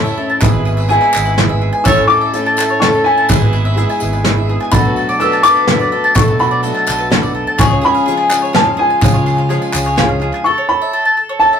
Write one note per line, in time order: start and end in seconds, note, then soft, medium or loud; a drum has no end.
0.00 0.38 A1 medium
0.00 0.38 A2 medium
0.00 0.18 A3 medium
0.00 0.45 A3 medium
0.00 0.19 C#4 medium
0.00 0.45 C#4 medium
0.00 0.18 E4 medium
0.00 0.38 E4 medium
0.00 0.43 E4 medium
0.00 0.16 A4 medium
0.00 0.17 A4 medium
0.00 0.30 C#5 medium
0.00 0.45 C#5 medium
0.00 0.42 E5 medium
0.00 0.37 B5 medium
0.05 0.29 E5 medium
0.05 tambourine soft
0.17 0.42 C#4 medium
0.17 0.41 E4 medium
0.17 0.42 A4 medium
0.30 0.42 A5 medium
0.41 0.97 G#1 loud
0.41 1.82 G#1 medium
0.41 1.82 G#2 medium
0.41 0.87 G#3 medium
0.41 0.85 G#3 medium
0.41 0.85 B3 medium
0.41 0.89 B3 medium
0.41 0.89 E4 loud
0.41 0.86 E4 medium
0.41 0.64 G#4 loud
0.41 0.86 B4 medium
0.41 0.90 B4 loud
0.41 0.86 E5 loud
0.41 kick loud
0.41 clap loud
0.41 closed hi-hat medium
0.41 tambourine medium
0.53 1.02 B4 medium
0.65 0.88 G#4 medium
0.65 tambourine soft
0.77 1.01 E5 medium
0.77 tambourine soft
0.88 1.13 G#3 medium
0.88 1.34 G#3 medium
0.88 1.14 B3 medium
0.88 1.34 B3 medium
0.88 1.57 E4 medium
0.88 1.14 E4 medium
0.88 1.34 E4 medium
0.88 1.12 G#4 medium
0.88 1.34 B4 medium
0.88 1.12 B4 medium
0.88 1.34 E5 medium
0.88 1.58 G#5 loud
0.88 closed hi-hat medium
0.88 tambourine soft
1.01 1.49 G#5 medium
1.01 clap soft
1.13 1.69 G#1 medium
1.13 1.38 B3 soft
1.13 1.39 E4 soft
1.13 1.36 G#4 medium
1.13 1.38 B4 medium
1.13 clap loud
1.13 tambourine medium
1.25 1.74 B4 medium
1.25 tambourine soft
1.37 1.81 G#3 medium
1.37 1.86 G#3 medium
1.37 1.81 B3 medium
1.37 1.86 B3 medium
1.37 1.81 E4 medium
1.37 1.87 E4 medium
1.37 1.60 G#4 medium
1.37 1.81 B4 medium
1.37 1.87 B4 medium
1.37 1.81 E5 medium
1.37 snare medium
1.37 closed hi-hat medium
1.49 1.72 E5 medium
1.62 1.86 G#4 medium
1.73 1.85 G#5 medium
1.84 3.26 A1 medium
1.84 2.05 A1 medium
1.84 2.34 A2 medium
1.84 3.26 A2 medium
1.84 2.29 A3 medium
1.84 2.32 A3 medium
1.84 2.29 C#4 medium
1.84 2.34 C#4 medium
1.84 2.29 E4 medium
1.84 2.35 E4 medium
1.84 2.08 A4 loud
1.84 2.06 C#5 loud
1.84 2.29 C#5 medium
1.84 2.29 E5 medium
1.84 2.07 E6 loud
1.84 kick loud
1.84 clap loud
1.84 closed hi-hat medium
1.84 tambourine medium
1.88 2.35 A4 medium
1.97 2.45 C#4 medium
2.07 2.53 A4 medium
2.07 2.32 A4 medium
2.07 2.53 D6 loud
2.07 tambourine soft
2.21 2.46 E5 medium
2.33 2.77 A3 medium
2.33 2.80 A3 medium
2.33 2.77 C#4 medium
2.33 2.81 C#4 medium
2.33 2.77 E4 medium
2.33 2.82 E4 medium
2.33 2.57 A4 medium
2.33 2.83 A4 medium
2.33 2.77 C#5 medium
2.33 2.77 E5 medium
2.33 closed hi-hat medium
2.33 tambourine soft
2.46 2.94 A5 medium
2.46 clap soft
2.57 2.81 A4 medium
2.57 clap loud
2.57 tambourine medium
2.69 3.18 C#5 medium
2.69 tambourine soft
2.80 3.05 A3 medium
2.80 3.25 A3 medium
2.80 3.06 C#4 medium
2.80 3.25 C#4 medium
2.80 3.25 E4 medium
2.80 3.05 E4 medium
2.80 3.03 A4 medium
2.80 3.05 A4 medium
2.80 3.25 C#5 medium
2.80 3.25 E5 medium
2.80 3.06 C#6 medium
2.80 snare medium
2.80 closed hi-hat medium
2.84 3.04 A4 medium
2.92 3.17 E5 medium
2.92 tambourine soft
3.04 4.45 E4 medium
3.04 3.29 E4 soft
3.04 3.29 A4 medium
3.04 4.44 G#5 loud
3.08 3.30 C#4 soft
3.18 3.30 A5 medium
3.29 4.69 G#1 medium
3.29 3.84 G#1 loud
3.29 4.69 G#2 medium
3.29 3.75 G#3 medium
3.29 3.73 G#3 medium
3.29 3.73 B3 medium
3.29 3.77 B3 medium
3.29 3.73 E4 medium
3.29 3.77 E4 medium
3.29 3.52 G#4 loud
3.29 3.77 G#4 medium
3.29 3.73 B4 medium
3.29 3.73 E5 medium
3.29 kick loud
3.29 clap loud
3.29 closed hi-hat medium
3.29 tambourine medium
3.41 3.89 B4 medium
3.41 clap soft
3.53 3.76 G#4 medium
3.53 clap soft
3.53 tambourine soft
3.65 3.89 E5 medium
3.76 4.01 G#3 medium
3.76 4.20 G#3 medium
3.76 4.20 B3 medium
3.76 4.01 B3 medium
3.76 4.20 E4 medium
3.76 4.00 E4 medium
3.76 4.00 G#4 medium
3.76 3.99 G#4 medium
3.76 4.20 B4 medium
3.76 4.20 E5 loud
3.76 closed hi-hat medium
3.89 4.37 G#5 medium
3.89 tambourine soft
4.00 4.56 G#1 medium
4.00 4.24 B3 soft
4.00 4.25 E4 medium
4.00 4.25 G#4 medium
4.00 4.24 G#4 medium
4.00 tambourine medium
4.13 4.60 B4 medium
4.13 tambourine soft
4.24 4.68 G#3 medium
4.24 4.49 G#3 medium
4.24 4.68 B3 medium
4.24 4.49 B3 medium
4.24 4.68 E4 medium
4.24 4.47 E4 medium
4.24 4.48 G#4 medium
4.24 4.46 G#4 medium
4.24 4.68 B4 medium
4.24 4.68 E5 medium
4.24 snare medium
4.24 closed hi-hat medium
4.37 4.73 E5 medium
4.48 4.71 B3 soft
4.48 4.72 E4 medium
4.48 4.72 G#4 medium
4.48 4.73 G#4 medium
4.60 4.72 G#5 medium
4.60 clap soft
4.71 6.12 B1 medium
4.71 4.91 B1 loud
4.71 5.20 B2 medium
4.71 6.12 B2 medium
4.71 5.15 F#3 medium
4.71 5.18 F#3 medium
4.71 5.19 A3 medium
4.71 5.15 B3 medium
4.71 5.16 D4 medium
4.71 5.19 D4 medium
4.71 5.17 F#4 medium
4.71 5.21 F#4 medium
4.71 5.16 A4 medium
4.71 4.96 A4 medium
4.71 5.16 D5 medium
4.71 5.22 B5 loud
4.71 kick loud
4.71 clap loud
4.71 closed hi-hat medium
4.71 tambourine medium
4.85 5.08 B4 medium
4.96 5.20 A4 medium
4.96 tambourine soft
5.09 5.56 D5 medium
5.09 tambourine soft
5.19 5.44 F#3 medium
5.19 5.63 F#3 medium
5.19 5.44 A3 medium
5.19 5.63 B3 medium
5.19 5.63 D4 medium
5.19 5.44 D4 medium
5.19 5.43 F#4 medium
5.19 5.63 A4 medium
5.19 5.43 A4 medium
5.19 5.43 B4 medium
5.19 5.63 D5 medium
5.19 5.45 E6 loud
5.19 closed hi-hat medium
5.19 tambourine soft
5.33 5.81 A5 medium
5.33 clap soft
5.43 5.67 A3 soft
5.43 5.67 A4 medium
5.43 6.13 B4 medium
5.43 6.12 D6 loud
5.43 clap loud
5.43 tambourine medium
5.56 6.04 B4 medium
5.56 tambourine soft
5.67 6.11 F#3 medium
5.67 5.92 F#3 medium
5.67 5.93 A3 medium
5.67 6.11 B3 medium
5.67 6.11 D4 medium
5.67 5.92 D4 medium
5.67 5.91 F#4 medium
5.67 6.11 A4 medium
5.67 5.80 A4 medium
5.67 6.11 D5 medium
5.67 snare medium
5.67 closed hi-hat medium
5.80 5.92 D5 medium
5.80 tambourine soft
5.92 6.16 A3 soft
5.92 6.16 D4 soft
5.92 6.16 F#4 medium
5.92 6.14 A4 medium
6.04 6.52 A5 medium
6.15 7.56 B1 medium
6.15 6.64 B2 medium
6.15 6.70 B2 loud
6.15 7.55 B2 medium
6.15 6.63 F#3 medium
6.15 6.59 F#3 medium
6.15 6.64 A3 medium
6.15 6.59 B3 medium
6.15 6.60 D4 medium
6.15 6.64 D4 medium
6.15 6.65 F#4 medium
6.15 6.38 A4 medium
6.15 6.38 A4 loud
6.15 6.60 A4 medium
6.15 6.60 D5 loud
6.15 6.41 C#6 loud
6.15 kick loud
6.15 clap loud
6.15 closed hi-hat medium
6.15 tambourine medium
6.28 6.76 B4 medium
6.39 7.32 F#4 medium
6.39 6.51 A4 medium
6.39 7.32 B5 loud
6.39 tambourine soft
6.51 6.62 D5 medium
6.63 7.11 F#3 medium
6.63 7.07 F#3 medium
6.63 7.11 A3 medium
6.63 7.07 B3 medium
6.63 7.07 D4 medium
6.63 7.12 D4 medium
6.63 7.13 F#4 medium
6.63 6.86 A4 medium
6.63 7.07 A4 medium
6.63 7.07 D5 medium
6.63 closed hi-hat medium
6.63 tambourine soft
6.74 7.23 A5 medium
6.74 clap soft
6.87 7.43 B1 medium
6.87 7.09 A4 medium
6.87 clap loud
6.87 tambourine medium
6.99 7.47 B4 medium
7.10 7.54 F#3 medium
7.10 7.59 F#3 medium
7.10 7.59 A3 medium
7.10 7.54 B3 medium
7.10 7.54 D4 medium
7.10 7.60 D4 medium
7.10 7.23 A4 medium
7.10 7.54 A4 medium
7.10 7.55 D5 medium
7.10 snare medium
7.10 closed hi-hat medium
7.15 7.60 F#4 medium
7.23 7.34 D5 medium
7.23 tambourine soft
7.35 7.59 A4 medium
7.47 7.59 A5 medium
7.58 8.98 C#2 medium
7.58 7.77 C#2 loud
7.58 8.98 C#3 medium
7.58 8.07 C#3 medium
7.58 8.02 F3 medium
7.58 8.06 F3 medium
7.58 8.02 G#3 medium
7.58 8.07 G#3 medium
7.58 8.02 C#4 medium
7.58 8.09 C#4 loud
7.58 8.08 F4 medium
7.58 7.80 G#4 loud
7.58 8.02 G#4 medium
7.58 7.80 G#4 loud
7.58 8.02 C#5 medium
7.58 7.84 C#6 loud
7.58 kick loud
7.58 clap loud
7.58 closed hi-hat medium
7.58 tambourine medium
7.71 8.19 C#5 medium
7.81 8.50 G#4 loud
7.81 8.05 G#4 medium
7.81 8.58 B5 loud
7.81 tambourine soft
7.95 8.17 F5 medium
7.95 tambourine soft
8.06 8.31 F3 medium
8.06 8.50 F3 medium
8.06 8.51 G#3 medium
8.06 8.32 G#3 medium
8.06 8.51 C#4 medium
8.06 8.30 C#4 medium
8.06 8.28 G#4 medium
8.06 8.51 G#4 medium
8.06 8.51 C#5 medium
8.06 closed hi-hat medium
8.06 tambourine soft
8.10 8.30 F4 medium
8.17 8.65 G#5 medium
8.17 clap soft
8.29 8.55 C#4 soft
8.29 8.55 F4 medium
8.29 8.52 G#4 medium
8.29 clap loud
8.29 tambourine medium
8.34 8.55 G#3 soft
8.42 8.90 C#5 medium
8.42 tambourine soft
8.53 8.98 F3 medium
8.53 8.98 G#3 medium
8.53 8.98 C#4 medium
8.53 9.04 C#4 medium
8.53 8.77 F4 medium
8.53 8.76 G#4 medium
8.53 8.99 G#4 medium
8.53 8.98 C#5 medium
8.53 8.78 A5 medium
8.53 snare medium
8.53 closed hi-hat medium
8.57 9.04 F4 medium
8.66 8.90 F5 medium
8.77 9.94 F4 medium
8.77 9.00 G#4 medium
8.77 9.94 G#5 loud
8.90 9.38 G#5 medium
9.01 10.42 C#2 medium
9.01 10.42 C#3 medium
9.01 9.57 C#3 loud
9.01 9.51 C#3 medium
9.01 9.46 F3 medium
9.01 9.48 F3 medium
9.01 9.46 G#3 medium
9.01 9.49 G#3 medium
9.01 9.46 C#4 medium
9.01 9.51 C#4 medium
9.01 9.51 F4 medium
9.01 9.25 G#4 loud
9.01 9.46 G#4 medium
9.01 9.46 C#5 medium
9.01 kick loud
9.01 clap medium
9.01 closed hi-hat medium
9.01 tambourine loud
9.14 9.62 C#5 medium
9.14 clap soft
9.26 9.49 G#4 medium
9.26 clap soft
9.26 tambourine soft
9.38 9.61 F5 medium
9.38 clap soft
9.49 9.93 F3 medium
9.49 9.96 F3 medium
9.49 9.93 G#3 medium
9.49 9.96 G#3 medium
9.49 9.93 C#4 medium
9.49 9.97 C#4 medium
9.49 9.97 F4 medium
9.49 9.93 G#4 medium
9.49 9.73 G#4 medium
9.49 9.72 C#5 medium
9.49 clap soft
9.49 closed hi-hat medium
9.62 10.08 G#5 medium
9.62 tambourine soft
9.74 10.28 C#2 medium
9.74 9.96 G#4 medium
9.74 9.96 C#5 medium
9.74 clap loud
9.74 tambourine loud
9.86 10.34 C#5 medium
9.86 clap soft
9.86 tambourine soft
9.97 10.21 F3 medium
9.97 10.41 F3 medium
9.97 10.41 G#3 medium
9.97 10.22 G#3 medium
9.97 10.41 C#4 medium
9.97 10.21 C#4 medium
9.97 10.20 F4 medium
9.97 10.20 G#4 medium
9.97 10.41 G#4 medium
9.97 10.41 C#5 medium
9.97 10.20 F5 medium
9.97 snare loud
9.97 clap soft
9.97 closed hi-hat medium
9.97 tambourine soft
10.09 10.45 F5 medium
10.21 10.47 G#3 soft
10.21 10.46 C#4 medium
10.21 10.45 F4 medium
10.21 10.46 G#4 medium
10.21 10.44 G#5 medium
10.21 clap soft
10.34 10.46 G#5 medium
10.34 clap soft
10.44 10.68 A4 medium
10.44 10.67 C#6 loud
10.58 11.06 C#5 medium
10.69 10.92 A4 medium
10.69 11.14 B5 loud
10.82 11.05 E5 medium
10.93 11.16 A4 medium
11.05 11.53 A5 medium
11.17 11.39 A4 medium
11.29 11.60 C#5 medium
11.40 11.60 A4 medium
11.40 11.60 A5 loud
11.53 11.60 E5 medium